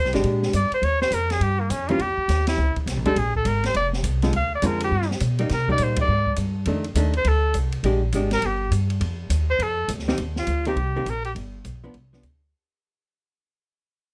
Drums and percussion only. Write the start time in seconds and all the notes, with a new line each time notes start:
0.05 snare
0.13 snare, ride
0.24 ride
0.43 snare
0.53 hi-hat pedal, ride
0.72 ride
0.83 ride
1.02 snare
1.12 hi-hat pedal, ride
1.30 snare, ride
1.41 ride
1.70 hi-hat pedal, ride
1.89 ride
1.99 ride
2.29 snare, hi-hat pedal, ride
2.47 snare, ride
2.76 kick, ride
2.87 snare, hi-hat pedal, ride
3.05 kick, ride
3.16 ride
3.35 kick
3.45 hi-hat pedal, ride
3.64 snare, ride
3.74 ride
3.93 snare
4.04 hi-hat pedal, ride
4.22 snare, ride
4.33 ride
4.62 hi-hat pedal, ride
4.80 ride
5.02 snare
5.11 snare
5.20 hi-hat pedal, ride
5.39 ride
5.49 snare, ride
5.68 kick
5.78 hi-hat pedal, ride
5.96 kick, ride
6.26 kick
6.36 hi-hat pedal, ride
6.65 ride
6.84 ride
6.95 hi-hat pedal, ride
7.13 ride
7.25 ride
7.54 hi-hat pedal, ride
7.72 ride
7.84 ride
8.12 hi-hat pedal, ride
8.31 snare, ride
8.42 ride
8.72 hi-hat pedal, ride
8.90 ride
9.01 ride
9.30 hi-hat pedal, ride
9.60 ride
9.88 hi-hat pedal, ride
9.99 snare
10.08 snare
10.18 ride
10.36 snare
10.47 hi-hat pedal, ride
10.65 ride
10.77 ride
11.06 hi-hat pedal, ride
11.24 ride
11.36 ride
11.65 hi-hat pedal, ride
11.94 ride
12.13 snare
12.23 hi-hat pedal, ride